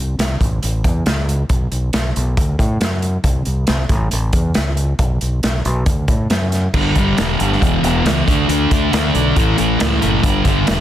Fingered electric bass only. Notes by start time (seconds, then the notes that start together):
Already playing: C2
0.19 C2
0.40 A1
0.63 A1
0.85 E2
1.06 C#2
1.49 B1
1.72 B1
1.94 B1
2.17 B1
2.37 D2
2.59 A2
2.80 F#2
3.24 C2
3.46 C2
3.69 C2
3.89 A1
4.13 A1
4.33 E2
4.57 C#2
4.99 B1
5.22 B1
5.44 B1
5.65 B1
5.86 D2
6.08 A2
6.30 F#2
6.73 G1
6.96 G1
7.19 E1
7.40 G1
7.62 E1
7.83 E1
8.04 C#2
8.28 D2
8.49 D2
8.71 D2
8.93 D2
9.15 B1
9.37 A1
9.60 A1
9.81 C#2
10.03 F#1
10.23 G1
10.45 G1
10.68 E1